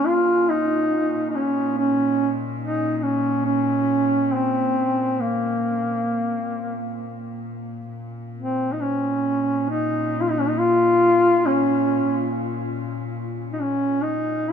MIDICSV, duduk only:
0, 0, Header, 1, 2, 480
1, 0, Start_track
1, 0, Key_signature, -5, "minor"
1, 0, Tempo, 846262
1, 47, Time_signature, 3, 2, 24, 8
1, 1966, Tempo, 867052
1, 3406, Tempo, 906344
1, 5326, Tempo, 873362
1, 6766, Tempo, 848656
1, 8017, End_track
2, 0, Start_track
2, 0, Title_t, "Duduk"
2, 0, Program_c, 0, 69
2, 37, Note_on_c, 0, 65, 90
2, 280, Note_on_c, 0, 63, 77
2, 289, Note_off_c, 0, 65, 0
2, 735, Note_off_c, 0, 63, 0
2, 739, Note_on_c, 0, 63, 50
2, 767, Note_on_c, 0, 61, 66
2, 775, Note_off_c, 0, 63, 0
2, 1003, Note_off_c, 0, 61, 0
2, 1006, Note_on_c, 0, 61, 78
2, 1318, Note_off_c, 0, 61, 0
2, 1485, Note_on_c, 0, 63, 76
2, 1691, Note_off_c, 0, 63, 0
2, 1691, Note_on_c, 0, 63, 46
2, 1718, Note_on_c, 0, 61, 68
2, 1726, Note_off_c, 0, 63, 0
2, 1954, Note_off_c, 0, 61, 0
2, 1958, Note_on_c, 0, 61, 76
2, 2448, Note_on_c, 0, 60, 69
2, 2456, Note_off_c, 0, 61, 0
2, 2927, Note_on_c, 0, 58, 62
2, 2935, Note_off_c, 0, 60, 0
2, 3884, Note_off_c, 0, 58, 0
2, 4633, Note_on_c, 0, 60, 62
2, 4814, Note_on_c, 0, 63, 52
2, 4822, Note_off_c, 0, 60, 0
2, 4859, Note_on_c, 0, 61, 64
2, 4867, Note_off_c, 0, 63, 0
2, 5323, Note_off_c, 0, 61, 0
2, 5326, Note_on_c, 0, 63, 73
2, 5609, Note_on_c, 0, 65, 69
2, 5617, Note_off_c, 0, 63, 0
2, 5660, Note_on_c, 0, 63, 73
2, 5668, Note_off_c, 0, 65, 0
2, 5709, Note_on_c, 0, 61, 68
2, 5717, Note_off_c, 0, 63, 0
2, 5760, Note_on_c, 0, 63, 62
2, 5769, Note_off_c, 0, 61, 0
2, 5815, Note_on_c, 0, 65, 101
2, 5823, Note_off_c, 0, 63, 0
2, 6297, Note_on_c, 0, 61, 80
2, 6305, Note_off_c, 0, 65, 0
2, 6770, Note_off_c, 0, 61, 0
2, 7451, Note_on_c, 0, 63, 51
2, 7501, Note_on_c, 0, 61, 72
2, 7510, Note_off_c, 0, 63, 0
2, 7730, Note_on_c, 0, 63, 75
2, 7739, Note_off_c, 0, 61, 0
2, 8015, Note_off_c, 0, 63, 0
2, 8017, End_track
0, 0, End_of_file